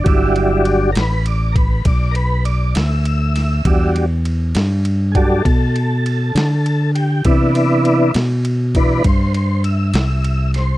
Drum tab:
RD |xxxxxxxxxxxx|xxxxxxxxxxxx|xxxxxxxxxxxx|
SD |---o-----o-o|---o-----o--|---o-----o-o|
BD |o----oo-----|o----oo-----|o----oo-----|